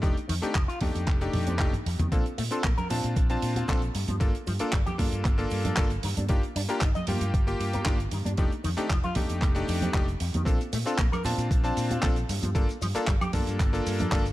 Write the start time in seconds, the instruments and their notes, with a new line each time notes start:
0.02 fingered electric bass F1, clean electric guitar F3, electric grand piano A3 D4 D#4 G4, kick, closed hi-hat
0.17 closed hi-hat
0.28 fingered electric bass F2, clean electric guitar D#3, open hi-hat
0.42 electric grand piano A3 D4 D#4 G4, clean electric guitar C4, muted fingered electric bass stroke, closed hi-hat
0.55 fingered electric bass F1, clean electric guitar F3, kick, clap, closed hi-hat
0.68 clean electric guitar F4, closed hi-hat
0.81 fingered electric bass F2, electric grand piano A3 D4 D#4 G4, kick, open hi-hat, high conga
0.95 fingered electric bass F2, closed hi-hat
1.07 fingered electric bass F1, kick, clap, closed hi-hat, high conga
1.21 electric grand piano A3 D4 D#4 G4, closed hi-hat
1.33 fingered electric bass F2, open hi-hat, high tom
1.47 clean electric guitar C4, closed hi-hat, high conga
1.59 fingered electric bass F1, clean electric guitar F3, electric grand piano A3 D4 D#4 G4, kick, clap, closed hi-hat, mid tom
1.73 closed hi-hat, mid tom
1.86 clean electric guitar F2, fingered electric bass F2, open hi-hat
1.99 fingered electric bass F2, clean electric guitar D#3, closed hi-hat, mid tom, high conga
2.12 fingered electric bass A#1, clean electric guitar A#3, electric grand piano C4 D4 F4 A4, kick, closed hi-hat, cabasa
2.26 closed hi-hat, cabasa
2.38 fingered electric bass A#2, clean electric guitar A3, open hi-hat, cabasa
2.51 electric grand piano C4 D4 F4 A4, clean electric guitar F4, closed hi-hat, cabasa
2.64 fingered electric bass A#1, clean electric guitar A#3, kick, clap, closed hi-hat, cabasa
2.78 clean electric guitar A#4, closed hi-hat, low conga, cabasa
2.90 fingered electric bass A#2, electric grand piano C4 D4 F4 A5, open hi-hat, high conga, cabasa
3.04 fingered electric bass A#2, closed hi-hat, cabasa
3.16 fingered electric bass A#1, kick, closed hi-hat, cabasa
3.30 electric grand piano C4 D4 F4 A5, closed hi-hat, cabasa
3.42 fingered electric bass A#2, open hi-hat, cabasa
3.56 clean electric guitar F4, closed hi-hat, high conga, cabasa
3.68 fingered electric bass A#1, clean electric guitar A#3, electric grand piano C4 D4 F4 A4, kick, clap, closed hi-hat, cabasa
3.82 closed hi-hat, cabasa
3.95 fingered electric bass G2, clean electric guitar G2, open hi-hat, cabasa
4.08 fingered electric bass G2, clean electric guitar F3, closed hi-hat, high conga, cabasa
4.20 fingered electric bass G1, clean electric guitar G3, electric grand piano A#3 D4 F4 A4, kick, closed hi-hat, cabasa
4.35 closed hi-hat, cabasa
4.47 fingered electric bass G2, clean electric guitar F3, open hi-hat, cabasa
4.59 electric grand piano A#3 D4 F4 A4, clean electric guitar D4, muted fingered electric bass stroke, closed hi-hat, cabasa
4.72 fingered electric bass G1, clean electric guitar G3, kick, clap, closed hi-hat, cabasa
4.86 clean electric guitar G4, closed hi-hat, low conga, cabasa
4.98 fingered electric bass G2, electric grand piano A#3 D4 F4 A4, kick, open hi-hat, high conga, cabasa
5.12 fingered electric bass G2, closed hi-hat, cabasa
5.25 fingered electric bass G1, kick, clap, closed hi-hat, high conga, cabasa
5.38 electric grand piano A#3 D4 F4 A4, closed hi-hat, cabasa
5.50 fingered electric bass G2, open hi-hat, cabasa
5.65 clean electric guitar D4, closed hi-hat, high conga, low conga, cabasa
5.77 fingered electric bass G1, clean electric guitar G3, electric grand piano A#3 D4 F4 A4, kick, clap, closed hi-hat, cabasa
5.90 closed hi-hat, cabasa
6.03 fingered electric bass G2, clean electric guitar D#3, open hi-hat, cabasa
6.17 fingered electric bass G2, clean electric guitar D4, closed hi-hat, high conga, cabasa
6.29 fingered electric bass G1, electric grand piano A#3 D4 F4 G4, clean electric guitar D#4, kick, closed hi-hat, cabasa
6.43 closed hi-hat, cabasa
6.56 fingered electric bass G2, clean electric guitar D4, open hi-hat, cabasa
6.69 electric grand piano A#3 D4 F4 G4, clean electric guitar A#4, closed hi-hat, cabasa
6.81 fingered electric bass G1, clean electric guitar D#4, kick, clap, closed hi-hat, cabasa
6.95 clean electric guitar D#5, closed hi-hat, low conga, cabasa
7.07 fingered electric bass G2, electric grand piano A#3 F4 G4, open hi-hat, high conga, cabasa
7.21 fingered electric bass G2, closed hi-hat, cabasa
7.34 fingered electric bass G1, kick, closed hi-hat, cabasa
7.47 electric grand piano A#3 F4 G4, closed hi-hat, cabasa
7.60 fingered electric bass G2, open hi-hat, cabasa
7.73 clean electric guitar A#4, closed hi-hat, high conga, cabasa
7.85 fingered electric bass G1, electric grand piano A#3 D4 F4 G4, clean electric guitar D#4, kick, clap, closed hi-hat, cabasa
8.00 closed hi-hat, cabasa
8.11 fingered electric bass G2, clean electric guitar D#3, open hi-hat, cabasa
8.25 fingered electric bass G2, clean electric guitar D4, closed hi-hat, high conga, cabasa
8.37 fingered electric bass F1, clean electric guitar F3, electric grand piano A3 D4 D#4 G4, kick, closed hi-hat, cabasa
8.52 closed hi-hat, cabasa
8.64 fingered electric bass F2, clean electric guitar D#3, open hi-hat, cabasa
8.77 electric grand piano A3 D4 D#4 G4, clean electric guitar C4, muted fingered electric bass stroke, closed hi-hat, cabasa
8.90 fingered electric bass F1, clean electric guitar F3, kick, clap, closed hi-hat, cabasa
9.04 clean electric guitar F4, closed hi-hat, low conga, cabasa
9.15 fingered electric bass F2, electric grand piano A3 D4 D#4 G4, kick, open hi-hat, high conga, cabasa
9.30 fingered electric bass F2, closed hi-hat, cabasa
9.42 fingered electric bass F1, kick, clap, closed hi-hat, high conga, cabasa
9.55 electric grand piano A3 D4 D#4 G4, closed hi-hat, cabasa
9.68 fingered electric bass F2, open hi-hat, cabasa
9.81 clean electric guitar C4, closed hi-hat, high conga, low conga, cabasa
9.93 fingered electric bass F1, clean electric guitar F3, electric grand piano A3 D4 D#4 G4, kick, clap, closed hi-hat, cabasa
10.08 closed hi-hat, cabasa
10.20 clean electric guitar F2, fingered electric bass F2, open hi-hat, cabasa
10.34 fingered electric bass F2, clean electric guitar D#3, closed hi-hat, high conga, cabasa
10.45 fingered electric bass A#1, clean electric guitar A#3, electric grand piano C4 D4 F4 A4, kick, closed hi-hat, cabasa, shaker
10.60 closed hi-hat, cabasa, shaker
10.73 fingered electric bass A#2, clean electric guitar A3, open hi-hat, cabasa, shaker
10.86 electric grand piano C4 D4 F4 A4, clean electric guitar F4, closed hi-hat, cabasa, shaker
10.98 fingered electric bass A#1, clean electric guitar A#3, kick, clap, closed hi-hat, cabasa, shaker
11.12 clean electric guitar A#4, closed hi-hat, low conga, cabasa, high woodblock, shaker
11.24 fingered electric bass A#2, electric grand piano C4 D4 F4 A5, open hi-hat, high conga, cabasa, shaker
11.38 fingered electric bass A#2, closed hi-hat, cabasa, shaker
11.51 fingered electric bass A#1, kick, closed hi-hat, cabasa, shaker
11.63 electric grand piano C4 D4 F4 A5, closed hi-hat, cabasa, shaker
11.77 fingered electric bass A#2, open hi-hat, cabasa, shaker
11.91 clean electric guitar F4, closed hi-hat, high conga, cabasa, shaker
12.02 fingered electric bass A#1, clean electric guitar A#3, electric grand piano C4 D4 F4 A4, kick, clap, closed hi-hat, cabasa, shaker
12.16 closed hi-hat, cabasa, shaker
12.29 fingered electric bass G2, clean electric guitar G2, open hi-hat, cabasa, shaker
12.42 fingered electric bass G2, clean electric guitar F3, closed hi-hat, high conga, cabasa, shaker
12.55 fingered electric bass G1, clean electric guitar G3, electric grand piano A#3 D4 F4 A4, kick, closed hi-hat, cabasa, shaker
12.69 closed hi-hat, cabasa, shaker
12.81 fingered electric bass G2, clean electric guitar F3, open hi-hat, cabasa, shaker
12.95 electric grand piano A#3 D4 F4 A4, clean electric guitar D4, muted fingered electric bass stroke, closed hi-hat, cabasa, shaker
13.07 fingered electric bass G1, clean electric guitar G3, kick, clap, closed hi-hat, cabasa, shaker
13.21 clean electric guitar G4, closed hi-hat, low conga, cabasa, high woodblock, shaker
13.33 fingered electric bass G2, electric grand piano A#3 D4 F4 A4, kick, open hi-hat, high conga, cabasa, shaker
13.47 fingered electric bass G2, closed hi-hat, cabasa, shaker
13.60 fingered electric bass G1, kick, clap, closed hi-hat, high conga, cabasa, shaker
13.73 electric grand piano A#3 D4 F4 A4, closed hi-hat, cabasa, shaker
13.86 fingered electric bass G2, open hi-hat, cabasa, shaker
13.99 clean electric guitar D4, closed hi-hat, high conga, low conga, cabasa, shaker
14.12 fingered electric bass G1, clean electric guitar G3, electric grand piano A#3 D4 F4 A4, kick, clap, closed hi-hat, cabasa, shaker
14.26 closed hi-hat, cabasa, shaker